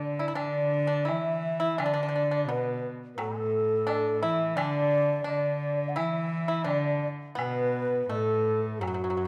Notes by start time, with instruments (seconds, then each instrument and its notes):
Already playing: cello D3, pipa D4, xiao D5
0.19 pipa E4
0.28 pipa E4
0.35 cello D3, pipa D4, xiao D5, high woodblock
0.87 pipa D4, xiao D5
1.05 pipa E4, xiao E5, high woodblock, low woodblock
1.09 cello E3
1.60 pipa E4
1.78 cello D3, pipa D4, xiao D5, high woodblock
1.86 pipa D4
1.94 pipa D4
2.03 pipa D4
2.09 pipa D4
2.16 pipa D4
2.31 pipa D4, xiao D5
2.47 cello B2, pipa B3, xiao B4, low woodblock
3.15 cello A2, pipa F#3, xiao A4 B4
3.19 xiao A4, high woodblock
3.39 pipa A3
3.87 pipa D4, high woodblock, low woodblock
4.21 cello E3, pipa E4, xiao E5
4.51 xiao E5
4.56 cello D3, pipa D4, xiao D5, high woodblock
5.24 cello D3, pipa D4, xiao D5, low woodblock
5.76 xiao D5
5.88 xiao F#5
5.94 cello E3, pipa E4, xiao E5, high woodblock
6.48 pipa E4
6.64 cello D3, pipa D4, xiao D5, high woodblock, low woodblock
7.35 cello B2, pipa B3, xiao B4, high woodblock
8.10 cello A2, pipa A3, xiao A4, low woodblock
8.64 xiao A4
8.81 cello F#2, pipa F#3, xiao F#4, high woodblock
8.87 pipa F#3
8.94 pipa F#3
9.04 pipa F#3
9.10 pipa F#3
9.17 pipa F#3